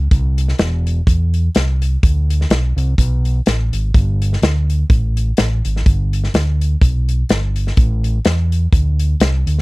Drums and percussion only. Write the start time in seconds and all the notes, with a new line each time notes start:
0.11 kick, closed hi-hat
0.38 closed hi-hat
0.48 snare
0.59 snare, closed hi-hat
0.87 closed hi-hat
1.07 kick, closed hi-hat
1.34 closed hi-hat
1.55 snare, closed hi-hat
1.82 closed hi-hat
2.03 kick, closed hi-hat
2.30 closed hi-hat
2.41 snare
2.50 snare, closed hi-hat
2.78 closed hi-hat
2.98 kick, closed hi-hat
3.25 closed hi-hat
3.46 snare, closed hi-hat
3.73 closed hi-hat
3.94 kick, closed hi-hat
4.22 closed hi-hat
4.33 snare
4.43 snare, closed hi-hat
4.70 closed hi-hat
4.90 kick, closed hi-hat
5.17 closed hi-hat
5.37 snare, closed hi-hat
5.65 closed hi-hat
5.76 snare
5.86 kick, closed hi-hat
6.13 closed hi-hat
6.24 snare
6.34 snare, closed hi-hat
6.61 closed hi-hat
6.82 kick, closed hi-hat
7.09 closed hi-hat
7.29 snare, closed hi-hat
7.56 closed hi-hat
7.67 snare
7.77 kick, closed hi-hat
8.04 closed hi-hat
8.25 snare, closed hi-hat
8.52 closed hi-hat
8.73 kick, closed hi-hat
9.00 closed hi-hat
9.20 snare, closed hi-hat
9.47 closed hi-hat
9.59 snare